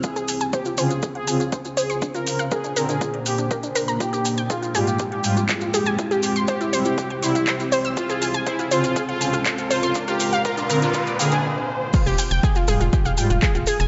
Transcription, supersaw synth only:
\new Staff \with { instrumentName = "Supersaw synth" } { \time 4/4 \key f \minor \tempo 4 = 121 aes'8. r16 g'8 aes'8 r16 aes'8 r8. aes'8 | r16 bes'8 r16 aes'8 r16 aes'8 r16 g'8 r4 | g'8. r16 f'8 g'8 r16 g'8 r8. g'8 | r16 g'8 r16 g'8 r16 g'8 r16 e'8 r4 |
f'8. r16 e'8 f'8 r16 f'8 r8. f'8 | r16 g'8 r16 f'8 r16 f'8 r16 aes'8 r4 | r1 | }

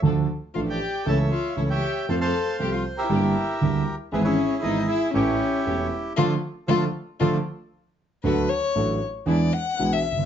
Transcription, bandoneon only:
\new Staff \with { instrumentName = "Bandoneon" } { \time 4/4 \key d \minor \tempo 4 = 117 << { r4 f''16 g''8. a''8 f''8 e''16 g''8. | a''16 a''8. g''16 f''8 e''4.~ e''16 r8 | b'16 cis''8. ees''8 e''8 cis''4. r8 | <f' a' d''>8 r8 <f' a' d''>8 r8 <f' a' d''>8 r4. |
\key d \major r1 | } \\ { r4 r16 d''8. <cis'' e''>4~ <cis'' e''>16 <cis'' e''>8. | <c'' f''>16 <c'' f''>4. <g' bes'>2 r16 | <e' gis'>16 <e' gis'>4.~ <e' gis'>16 <e' g'>2 | r1 |
r1 | } >> }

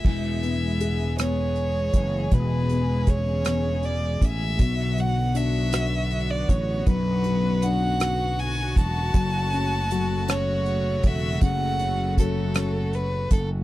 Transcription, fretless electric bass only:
\new Staff \with { instrumentName = "Fretless electric bass" } { \clef bass \time 6/8 \key e \mixolydian \tempo 4. = 53 e,,2~ e,,8 fis,,8 | e,,2~ e,,8 a,,8 | b,,2~ b,,8 a,,8 | b,,2~ b,,8 e,,8 |
fis,,2~ fis,,8 e,,8 | fis,,2~ fis,,8 fis,,8 | }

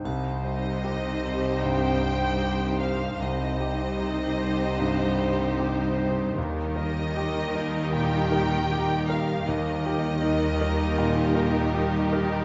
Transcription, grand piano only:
\new Staff \with { instrumentName = "Grand piano" } { \time 4/4 \key c \minor \tempo 4 = 77 c,8 c''8 g'8 c''8 g,8 c''8 g'8 c''8 | c,8 g'8 ees'8 c''8 g,8 c''8 g'8 c''8 | ees,8 bes'8 g'8 bes'8 bes,8 bes'8 g'8 bes'8 | ees,8 g'8 ees'8 bes'8 bes,8 bes'8 g'8 bes'8 | }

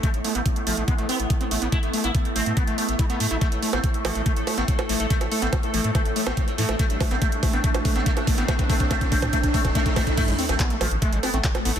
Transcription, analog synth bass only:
\new Staff \with { instrumentName = "Analog synth bass" } { \clef bass \time 4/4 \key a \minor \tempo 4 = 142 r16 a,,16 r16 a,,16 r8 a,,16 a,,16 r16 a,,16 r16 a,,16 r8 a,,16 a,,16 | r16 a,,16 r16 a,,16 r8 a,,16 a,16 r16 a,,16 r16 a,,16 r8 a,16 a,,16 | r16 a,,16 r16 a,,16 r8 a,,16 a,,16 r16 a,,16 r16 a,,16 r8 a,,16 a,,16 | r16 a,,16 r16 a,,16 r8 a,,16 a,16 r16 a,,16 r16 a,,16 r8 a,16 a,,16 |
r16 a,,16 r16 a,,16 r8 a,,16 a,,16 r16 a,,16 r16 a,,16 r8 a,,16 a,,16 | r16 a,,16 r16 a,,16 r8 a,,16 a,16 r16 a,,16 r16 e,,16 r8 a,,16 a,,16 | r16 a,,16 r16 a,,16 r8 a,,16 a,,16 r16 a,,16 r16 a,,16 r8 a,,16 a,,16 | }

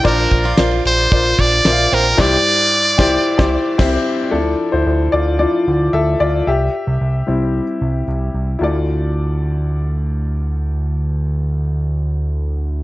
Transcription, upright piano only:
\new Staff \with { instrumentName = "Upright piano" } { \time 4/4 \key d \minor \tempo 4 = 112 << { <f' bes' c'' d''>4 <f' bes' c'' d''>4 <f' bes' c'' d''>4 <f' bes' c'' e'' f''>4 | <g, e' g' c'' d''>8 r4 <e' g' c'' d''>8 r16 <e' g' c'' d''>8 r16 <c' e' g' c'' e''>8 r8 | a'8. <e' c''>8. <f' d''>8 <f' d''>4 <a' e''>8 <f' d''>8 | <g' e''>2. r4 |
<e' f' a' d''>1~ | <e' f' a' d''>1 | } \\ { r1 | r1 | <f d' e'>4. r8 <f d' e'>8 r4. | r4. <g c' e'>8 r2 |
d,1~ | d,1 | } >> }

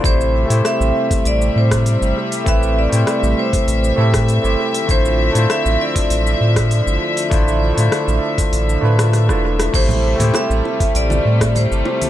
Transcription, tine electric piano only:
\new Staff \with { instrumentName = "Tine electric piano" } { \time 4/4 \key a \minor \tempo 4 = 99 <a c' e' g' c''>8. <a c' e' g' c''>2.~ <a c' e' g' c''>16 | <a c' e' g' b'>8. <a c' e' g' c''>4.~ <a c' e' g' c''>16 <a c' e' g' a'>8. <a c' e' g' c''>8. | <a d' e' f' c''>8. <a d' e' f' c''>2.~ <a d' e' f' c''>16 | <a d' e' f' c''>8. <a d' e' f' c''>4.~ <a d' e' f' c''>16 <a d' e' f' b'>8. <a d' e' f' d''>8. |
<a c' e' g' c''>8. <a c' e' g' c''>2.~ <a c' e' g' c''>16 | }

